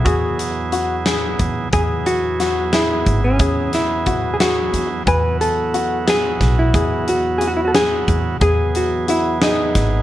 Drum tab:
HH |xxxxx|xxxxx|xxxxx|xxxxx|
SD |---o-|--oo-|-o-o-|---oo|
BD |o---o|o---o|o-o--|o---o|

HH |xxxxx|xxxxx|
SD |---o-|---oo|
BD |o---o|o---o|